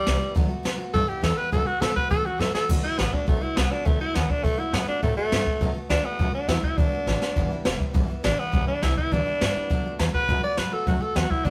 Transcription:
Already playing: G3
0.05 C2 E3 G3 B3 E4, snare, open hi-hat
0.19 E3 G3 B3 E4
0.35 D2 D3 F#3 A3 B3 F#4, kick, open hi-hat
0.49 A3 B3 F#4
0.63 F#2 F#3 A3 B3 F#4, snare, open hi-hat
0.78 A3 B3 F#4, muted upright bass stroke
0.93 G2 D3 E3 G3 B3 E4 A4, kick, open hi-hat
1.07 E3 G3 B3 E4 G4, muted upright bass stroke
1.22 E2 E3 G3 B3 E4 A4, snare, open hi-hat
1.37 E3 G3 B3 E4 B4, muted upright bass stroke
1.52 F#2 D3 A3 B3 F#4 A4, kick, open hi-hat
1.66 A3 B3 F#4, muted upright bass stroke
1.80 B2 D3 A3 B3 F#4 A4, snare
1.96 A3 B3 F#4 B4, muted upright bass stroke, kick
2.10 A2 E3 A3 C#4 F#4 A4, kick, open hi-hat
2.24 A3 C#4 F#4, muted upright bass stroke
2.38 F#2 E3 A3 C#4 F#4 A4, snare
2.53 A3 C#4 F#4 A4, muted upright bass stroke, snare
2.68 D2 D3 A3 B3 F#4, kick, crash
2.83 A3 B3 E4 F#4
2.97 A1 D3 A3 B3 F#4, snare
3.13 A3 B3 D4 F#4, muted upright bass stroke, kick
3.27 B1 D3 A3 B3 F#4, kick, open hi-hat
3.41 A3 B3 E4 F#4, muted upright bass stroke
3.56 C2 D3 A3 B3 F#4, snare
3.71 A3 B3 D4 F#4
3.85 D2 D3 A3 B3 F#4, kick, open hi-hat
4.00 A3 B3 E4 F#4
4.14 D#2 D3 A3 B3 F#4, snare, open hi-hat
4.29 A3 B3 D4 F#4, kick
4.44 E2 D3 A3 B3 F#4, kick, open hi-hat
4.58 A3 B3 E4 F#4
4.72 F#2 D3 A3 B3 F#4, snare, open hi-hat
4.88 A3 B3 D4 F#4, muted upright bass stroke
5.02 A2 D3 A3 B3 F#4, kick, open hi-hat
5.17 A3 B3 F#4, muted upright bass stroke
5.32 G2 D3 B3 F#4, snare, open hi-hat
5.46 A3 B3 F#4, muted upright bass stroke, kick
5.61 F#2 D3 A3 B3 F#4, kick, open hi-hat
5.74 A3 B3 F#4, muted upright bass stroke
5.89 D2 D3 A3 B3 D4 F#4, snare, open hi-hat
6.03 A3 B3 F#4
6.19 F#2 D3 A3 B3 F#4, kick, open hi-hat
6.33 A3 B3 D4 F#4, muted upright bass stroke
6.48 E2 D3 A3 B3 E4 F#4, snare, open hi-hat
6.63 A3 B3 E4 F#4, kick
6.78 D2 D3 A3 B3 D4 F#4, kick, open hi-hat
6.92 A3 B3 F#4, muted upright bass stroke
7.06 A1 D3 A3 B3 F#4, snare
7.21 A3 B3 F#4, snare
7.36 G1 G2 D3 E3 G3 B3 E4, kick, open hi-hat
7.50 E3 G3 B3 E4, muted upright bass stroke
7.65 E1 E3 G3 B3 E4, snare, open hi-hat
7.80 E3 G3 B3 E4, muted upright bass stroke, kick
7.94 B1 G2 D3 E3 G3 B3 E4, kick, open hi-hat
8.08 E3 G3 B3 E4, muted upright bass stroke
8.23 A1 E3 G3 B3 D4 E4, snare, open hi-hat
8.38 E3 G3 B3 E4, muted upright bass stroke
8.52 B1 G2 D3 E3 G3 B3 E4, kick, open hi-hat
8.66 E3 G3 B3 D4 E4, muted upright bass stroke
8.82 C2 E3 G3 B3 E4, snare, open hi-hat
8.96 E3 G3 B3 E4, kick
9.11 D2 G2 D3 E3 G3 B3 D4 E4, kick, open hi-hat
9.26 E3 G3 B3 E4
9.41 G2 E3 G3 B3 E4, snare, open hi-hat
9.55 E3 G3 B3 E4, muted upright bass stroke
9.70 D2 D3 F#3 A3 B3 F#4, kick, open hi-hat
9.84 A3 B3 F#4, muted upright bass stroke
9.99 E2 F#3 A3 B3 F#4, snare, open hi-hat
10.13 A3 B3 F#4 B4, kick
10.28 F#2 D3 F#3 A3 B3 F#4, kick, open hi-hat
10.43 A3 B3 D5
10.57 G2 F#3 A3 B3 F#4 B4, snare, open hi-hat
10.72 A3 B3 F#4 A4
10.87 F#2 D3 F#3 A3 B3 F#4, kick, open hi-hat
11.00 A3 B3 F#4 A4, muted upright bass stroke
11.14 E2 F#3 A3 B3 F#4, snare, open hi-hat
11.30 A3 B3 E4 F#4, kick
11.45 D2 D3 F#3 A3 B3 D4 F#4, kick, open hi-hat

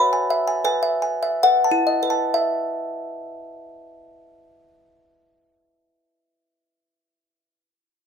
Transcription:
Already playing: B4 B5
0.13 G#5
0.30 E5
0.48 G#5
0.65 B4 G#5
0.83 E5
1.02 G#5
1.23 E5
1.43 B4 F#5
1.64 A5
1.71 E4
1.87 D#5
2.03 B4
2.10 A5
2.34 E5

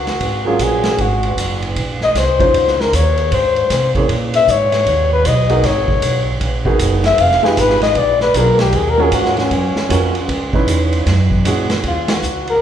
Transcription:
Already playing: C#2 F#4
0.07 snare, ride
0.21 G#1, kick, ride
0.45 F#3 A#3 C#4 F4 G#4
0.59 A#1 G#4, kick, hi-hat pedal, ride
0.84 snare, ride
0.98 G#1 F#4, kick, ride
1.23 ride
1.37 F#1, kick, hi-hat pedal, ride
1.62 ride
1.76 A#1, kick, ride
2.01 D#5, snare
2.15 C2 C5, kick, snare, hi-hat pedal, ride
2.39 G#3 C#4 D#4 F4 C5, kick, ride
2.54 C#2, kick, ride
2.67 snare
2.80 A#4, snare
2.93 D#2 C#5, kick, hi-hat pedal, ride
3.18 ride
3.31 G#2 C5, kick, ride
3.56 ride
3.70 C3, kick, snare, hi-hat pedal, ride
3.95 A#3 C#4 E4 G#4 C#5, kick, ride
4.09 A#2, kick, ride
4.34 E5, ride
4.48 G#2 C#5, kick, hi-hat pedal
4.72 snare, ride
4.86 D#2, kick, ride
5.13 B4
5.25 B1 D#5, kick, hi-hat pedal, ride
5.49 B3 D#4 F#4 G#4 A#4, ride
5.63 G#1 C#5, kick, snare, ride
5.88 kick
6.02 B1, kick, hi-hat pedal, ride
6.41 A#1, kick, ride
6.65 B3 D#4 F#4 G#4 A#4, kick
6.79 F#1, kick, hi-hat pedal, ride
7.04 E5, snare, ride
7.18 F1 F5, kick, ride
7.31 snare
7.43 G#3 D#4 F4 G4 G#4 B4, muted upright bass stroke, snare
7.57 G#1 B4, kick, hi-hat pedal, ride
7.70 snare
7.82 D#5, snare, ride
7.95 A#1 D5, kick, ride
8.20 B4, snare
8.34 B1 A#3 D4 F4 G#4 A#4, kick, hi-hat pedal, ride
8.59 G4, snare, ride
8.73 D#2, kick, ride
8.77 G#4
8.90 A#4
8.98 G#3 C#4 F4 F#4 A#4
9.03 G#4
9.12 G#2 F#4, kick, hi-hat pedal, ride
9.25 snare
9.37 C#4, snare, ride
9.51 F#2, kick, ride
9.75 muted upright bass stroke, snare
9.89 F2 G#3 C#4 F4 F#4 A#4, kick, hi-hat pedal, ride
10.15 ride
10.29 C#2, kick, ride
10.53 G#3 C#4 D#4 E4 B4, muted upright bass stroke, kick
10.67 E2, kick, hi-hat pedal, ride
10.93 ride
11.06 F#2, kick, snare, ride
11.31 kick
11.45 A#2 G#3 C#4 E4 F#4 G#4, kick, hi-hat pedal, ride
11.70 snare, ride
11.84 D#2 F4, kick, ride
12.08 F#4, snare, ride
12.22 C#2, hi-hat pedal
12.47 A#4, ride

